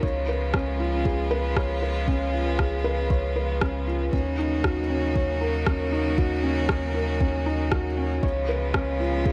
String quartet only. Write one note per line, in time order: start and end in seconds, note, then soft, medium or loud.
0.00 4.09 C#3 medium
0.00 4.09 F3 medium
0.00 4.09 G#3 medium
0.00 4.09 B3 medium
0.00 4.09 F4 medium
4.13 8.19 C#3 medium
4.13 8.19 F#3 medium
4.13 8.19 A#3 medium
4.13 8.19 D#4 medium
4.13 8.19 F#4 medium
8.23 9.32 C#3 medium
8.23 9.32 F3 medium
8.23 9.32 G#3 medium
8.23 9.32 B3 medium
8.23 9.32 F4 medium